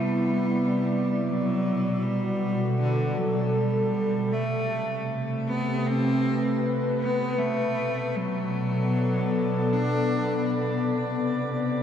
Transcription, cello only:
0.00 1.27 G3 medium
1.26 2.04 F#3 medium
2.02 2.79 G3 medium
2.81 3.19 D3 medium
3.17 3.56 F#3 medium
3.55 4.34 G3 medium
4.33 5.10 A3 medium
5.48 5.88 B3 medium
5.86 6.64 C4 medium
7.01 7.39 B3 medium
7.38 8.18 A3 medium
8.16 9.75 F#3 medium
9.73 10.49 D4 medium

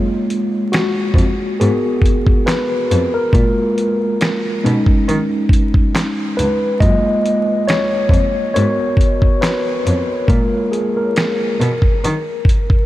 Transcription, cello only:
1.15 1.23 F2 medium
1.61 1.69 G#2 loud
2.91 2.99 F2 medium
3.33 3.42 A#2 medium
4.65 4.73 B2 medium
5.08 5.16 D#3 loud
6.39 6.47 C#2 medium
6.81 6.89 F#2 medium
8.10 8.18 F2 medium
8.56 8.64 G#2 loud
9.86 9.94 F2 medium
10.29 10.37 A#2 medium
11.60 11.68 B2 medium
12.04 12.12 D#3 loud

